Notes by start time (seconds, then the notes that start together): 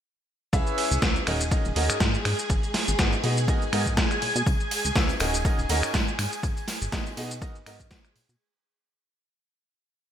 0.53 C#2 C#4 E4 G#4 B4 E5 G#5, kick, closed hi-hat, ride, shaker
0.67 closed hi-hat, shaker
0.78 open hi-hat, ride
0.91 C#2, closed hi-hat, shaker
1.02 C#2 E4 G#4 B4 E5, kick, snare, closed hi-hat, ride, shaker
1.16 closed hi-hat, shaker
1.27 D#1 C#4 D#4 F#4 A#4 D#5, finger snap, open hi-hat, ride
1.40 closed hi-hat, shaker
1.51 C#4 D#4 F#4 A#4 D#5, kick, closed hi-hat, ride, shaker
1.65 D#1, closed hi-hat, shaker
1.76 D#2 C#4 D#4 F#4 A#4 D#5, open hi-hat, ride
1.90 G#2, finger snap, closed hi-hat, shaker
2.00 G#2, kick, snare, closed hi-hat, ride, shaker
2.14 shaker
2.25 G#2, finger snap, open hi-hat, ride
2.39 closed hi-hat, shaker
2.50 G#1, kick, closed hi-hat, ride, shaker
2.63 closed hi-hat, shaker
2.74 snare, open hi-hat, ride
2.88 G#1, closed hi-hat, shaker
2.99 G#1 B3 D#4 F#4 G#4 D#5, kick, snare, closed hi-hat, ride, shaker
3.13 closed hi-hat, shaker
3.23 B2 B3 D#4 F#4 G#4 D#5, open hi-hat, ride
3.37 closed hi-hat, shaker
3.48 B3 D#4 F#4 A#4 D#5, kick, closed hi-hat, ride, shaker
3.62 G#2, closed hi-hat, shaker
3.72 G#2 B3 D#4 F#4 A#4 D#5, finger snap, open hi-hat, ride
3.86 kick, closed hi-hat, shaker
3.97 B1, kick, snare, closed hi-hat, ride, shaker
4.11 finger snap, shaker
4.22 B2, open hi-hat, ride
4.35 B2, closed hi-hat, shaker
4.46 C#2, kick, closed hi-hat, ride, tambourine, shaker
4.60 closed hi-hat, shaker
4.71 open hi-hat, ride, tambourine
4.85 C#2, closed hi-hat, tambourine, shaker
4.95 C#2 C#4 E4 G#4 B4 E5, kick, snare, closed hi-hat, ride, tambourine, shaker
5.09 closed hi-hat, tambourine, shaker
5.20 D#1 C#4 D#4 F#4 A#4 D#5, finger snap, open hi-hat, ride, tambourine
5.34 closed hi-hat, tambourine, shaker
5.45 C#4 D#4 F#4 A#4 D#5, kick, closed hi-hat, ride, tambourine, shaker
5.58 D#1, closed hi-hat, shaker
5.69 D#2 C#4 D#4 F#4 A#4 D#5, open hi-hat, ride, tambourine
5.83 G#2, finger snap, closed hi-hat, tambourine, shaker
5.94 G#2, kick, snare, closed hi-hat, ride, tambourine, shaker
6.08 shaker
6.19 G#2, finger snap, open hi-hat, ride, tambourine
6.32 closed hi-hat, tambourine, shaker
6.43 G#1, kick, closed hi-hat, ride, tambourine, shaker
6.57 closed hi-hat, tambourine, shaker
6.68 snare, open hi-hat, ride, tambourine
6.82 G#1, closed hi-hat, shaker
6.92 G#1 B3 D#4 F#4 G#4 D#5, kick, snare, closed hi-hat, ride, tambourine, shaker
7.06 closed hi-hat, tambourine, shaker
7.17 B2 B3 D#4 F#4 G#4 D#5, open hi-hat, ride, tambourine
7.31 closed hi-hat, tambourine, shaker
7.42 B3 D#4 F#4 A#4 D#5, kick, closed hi-hat, ride, tambourine, shaker
7.55 G#2, closed hi-hat, shaker
7.66 G#2 B3 D#4 F#4 A#4 D#5, finger snap, open hi-hat, ride, tambourine
7.80 kick, tambourine, shaker
7.91 B1, kick, snare, closed hi-hat, ride, tambourine, shaker
8.05 finger snap, shaker
8.15 B2, open hi-hat, ride, tambourine
8.29 B2, closed hi-hat, tambourine, shaker